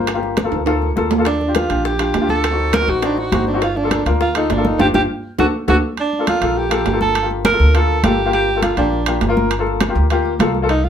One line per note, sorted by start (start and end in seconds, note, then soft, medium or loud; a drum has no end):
0.00 0.47 G1 medium
0.07 high bongo medium
0.07 high conga soft
0.07 high timbale medium
0.14 0.35 A#3 medium
0.14 0.36 F4 medium
0.14 0.36 G4 medium
0.23 high bongo soft
0.23 high conga soft
0.37 high bongo medium
0.37 high conga medium
0.37 high timbale medium
0.37 low timbale medium
0.44 0.60 A#3 medium
0.44 0.60 F4 medium
0.44 0.60 A4 medium
0.52 0.93 D2 medium
0.52 high conga soft
0.52 high timbale medium
0.66 0.87 A#3 medium
0.66 0.87 F4 medium
0.66 0.88 A4 loud
0.66 high bongo medium
0.66 high conga soft
0.66 high timbale loud
0.82 high bongo soft
0.82 high conga soft
0.96 1.65 D#2 medium
0.96 1.12 A#3 medium
0.96 1.12 F4 medium
0.96 1.12 A4 medium
0.96 high bongo soft
0.96 low bongo medium
0.96 high conga medium
1.11 high bongo soft
1.11 high conga soft
1.11 low timbale medium
1.18 1.26 A#3 medium
1.18 1.26 F4 medium
1.18 1.26 A4 medium
1.25 1.57 D4 loud
1.25 high bongo medium
1.25 high conga soft
1.25 high timbale medium
1.41 high bongo soft
1.41 high conga soft
1.47 1.63 D4 medium
1.47 1.64 F4 medium
1.47 1.64 G4 medium
1.55 1.85 F4 medium
1.55 high bongo medium
1.55 high conga medium
1.55 high timbale medium
1.55 low timbale medium
1.69 2.11 A#1 medium
1.69 1.90 D4 medium
1.69 1.91 F4 medium
1.69 1.91 G4 medium
1.69 high timbale medium
1.85 2.26 G4 medium
1.85 high bongo medium
1.85 high conga soft
1.99 2.15 D4 medium
1.99 2.15 F4 medium
1.99 2.15 G4 medium
1.99 high bongo soft
1.99 high conga soft
1.99 high timbale medium
2.14 2.83 D2 medium
2.14 high bongo soft
2.14 low bongo medium
2.14 high conga soft
2.14 high timbale medium
2.14 low timbale medium
2.21 2.42 D4 medium
2.21 2.42 F4 medium
2.21 2.43 G4 medium
2.29 2.75 A4 loud
2.29 high bongo soft
2.29 high conga medium
2.44 high bongo medium
2.44 high conga soft
2.44 high timbale medium
2.51 2.72 C4 medium
2.51 2.72 D#4 medium
2.51 2.72 F#4 medium
2.59 high bongo soft
2.59 high conga soft
2.73 2.91 A#4 loud
2.73 high bongo medium
2.73 high conga medium
2.73 high timbale medium
2.73 low timbale medium
2.80 2.96 C4 medium
2.80 2.96 D#4 medium
2.80 2.97 F#4 medium
2.88 3.29 A1 medium
2.88 3.04 F#4 loud
2.88 high conga soft
3.02 3.23 C4 medium
3.02 3.20 D4 medium
3.02 3.24 D#4 medium
3.02 3.24 F#4 medium
3.02 high bongo medium
3.02 high conga soft
3.02 high timbale medium
3.17 3.47 F#4 loud
3.17 high bongo soft
3.17 high conga soft
3.32 4.00 G1 medium
3.32 3.48 C4 medium
3.32 3.48 D#4 medium
3.32 3.48 F#4 medium
3.32 high bongo soft
3.32 low bongo medium
3.32 high conga medium
3.32 high timbale medium
3.32 low timbale medium
3.47 3.61 D4 medium
3.47 high bongo soft
3.47 high conga soft
3.53 3.61 C4 medium
3.53 3.62 D#4 medium
3.53 3.62 F#4 medium
3.61 3.78 F4 loud
3.61 high bongo medium
3.61 high conga soft
3.61 high timbale medium
3.76 4.06 D4 medium
3.76 high bongo soft
3.76 high conga soft
3.83 3.99 A#3 medium
3.83 3.99 F4 medium
3.83 4.00 A4 medium
3.91 high bongo medium
3.91 high conga medium
3.91 high timbale medium
3.91 low timbale medium
4.06 4.47 D2 medium
4.06 4.27 A#3 medium
4.06 4.27 F4 medium
4.06 4.27 A#4 medium
4.06 high timbale medium
4.21 4.35 F4 medium
4.21 high bongo medium
4.21 high conga soft
4.35 4.51 A#3 medium
4.35 4.53 D#4 medium
4.35 4.51 F4 medium
4.35 4.51 A4 medium
4.35 high bongo soft
4.35 high conga soft
4.35 high timbale medium
4.50 4.78 G1 medium
4.50 4.68 D4 medium
4.50 high bongo soft
4.50 low bongo medium
4.50 high conga soft
4.50 high timbale medium
4.50 low timbale medium
4.57 4.78 A#3 medium
4.57 4.78 F4 medium
4.57 4.78 A4 medium
4.65 4.80 D#4 medium
4.65 high bongo soft
4.65 high conga medium
4.79 4.90 G1 medium
4.79 4.89 D4 medium
4.79 4.89 F4 medium
4.79 4.89 G4 medium
4.79 4.88 G4 loud
4.79 low bongo medium
4.79 high conga medium
4.79 high timbale loud
4.94 5.05 G1 medium
4.94 5.04 D4 medium
4.94 5.04 F4 medium
4.94 5.04 G4 medium
4.94 5.02 G4 medium
4.94 low bongo medium
4.94 high conga medium
4.94 high timbale medium
5.39 5.50 D2 medium
5.39 5.48 D4 medium
5.39 5.48 F#4 medium
5.39 5.47 F#4 medium
5.39 5.48 A4 loud
5.39 low bongo medium
5.39 high conga medium
5.39 high timbale loud
5.68 5.79 D2 medium
5.68 5.77 D4 medium
5.68 5.77 F#4 medium
5.68 5.76 F#4 loud
5.68 5.77 A4 medium
5.68 low bongo loud
5.68 high conga loud
5.68 high timbale loud
5.97 6.26 D4 medium
5.97 high conga soft
5.97 high timbale medium
6.13 high conga soft
6.19 6.35 A#3 medium
6.19 6.35 F4 medium
6.19 6.36 A4 medium
6.27 6.59 F4 medium
6.27 high conga medium
6.27 high timbale loud
6.27 low timbale medium
6.41 6.83 A#1 medium
6.41 6.62 A#3 medium
6.41 6.62 F4 medium
6.41 6.63 A4 medium
6.41 high timbale medium
6.58 7.01 G4 medium
6.58 high conga soft
6.70 6.86 A#3 medium
6.70 6.86 F4 medium
6.70 6.87 A4 medium
6.70 high conga soft
6.70 high timbale medium
6.86 7.54 G1 medium
6.86 high conga soft
6.86 high timbale medium
6.86 low timbale medium
6.92 7.13 A#3 medium
6.92 7.14 F4 medium
6.92 7.14 A4 medium
7.01 7.29 A4 loud
7.01 high conga medium
7.15 high conga soft
7.15 high timbale medium
7.22 7.43 A#3 medium
7.22 7.43 F4 medium
7.22 7.44 G4 medium
7.31 high conga soft
7.45 7.77 A#4 loud
7.45 high conga medium
7.45 high timbale medium
7.45 low timbale medium
7.51 7.67 A#3 medium
7.51 7.68 F4 medium
7.51 7.68 A4 medium
7.59 8.01 D2 loud
7.59 high conga soft
7.74 7.95 A#3 medium
7.74 7.95 F4 medium
7.74 8.04 A4 loud
7.74 7.96 A4 medium
7.74 high conga soft
7.74 high timbale medium
7.89 high conga soft
8.03 8.72 G1 medium
8.03 8.19 A#3 medium
8.03 8.19 F4 medium
8.03 8.32 G4 medium
8.03 8.20 A4 medium
8.03 high conga medium
8.03 high timbale medium
8.03 low timbale medium
8.19 high conga soft
8.25 8.46 A#3 medium
8.25 8.47 F4 medium
8.25 8.47 G4 medium
8.33 8.61 G4 loud
8.33 high conga soft
8.33 high timbale medium
8.48 high conga soft
8.55 8.71 A#3 medium
8.55 8.71 F4 medium
8.55 8.72 A4 medium
8.62 8.77 F4 medium
8.62 high conga medium
8.62 high timbale medium
8.62 low timbale medium
8.77 9.19 A#1 medium
8.77 8.98 A#3 medium
8.77 9.19 D4 medium
8.77 8.98 F4 medium
8.77 8.99 G4 medium
8.77 high timbale medium
8.93 high conga soft
9.06 9.22 A#3 medium
9.06 9.23 F4 medium
9.06 9.23 G4 medium
9.06 high conga soft
9.06 high timbale loud
9.21 9.90 G1 medium
9.21 high conga soft
9.21 high timbale medium
9.21 low timbale medium
9.28 9.50 A#3 medium
9.28 9.50 F4 medium
9.28 9.50 A#4 loud
9.37 high conga medium
9.51 high conga soft
9.51 high timbale medium
9.59 9.79 A#3 medium
9.59 9.80 F4 medium
9.59 9.80 A4 medium
9.67 high conga soft
9.81 high conga loud
9.81 high timbale medium
9.81 low timbale medium
9.89 10.04 A#3 medium
9.89 10.04 F4 medium
9.89 10.05 G4 medium
9.95 10.37 D2 medium
9.95 high conga soft
10.10 10.31 A#3 medium
10.10 10.31 F4 medium
10.10 10.32 G4 loud
10.10 high conga soft
10.10 high timbale medium
10.25 high conga soft
10.39 10.89 C2 medium
10.39 10.55 A#3 medium
10.39 10.56 F4 medium
10.39 10.56 A4 medium
10.39 high conga medium
10.39 high timbale medium
10.39 low timbale medium
10.55 high conga soft
10.62 10.69 A#3 medium
10.62 10.70 F4 medium
10.62 10.70 A4 medium
10.69 10.86 D#4 loud
10.69 high conga soft
10.69 high timbale medium
10.84 10.89 F4 medium
10.84 high conga soft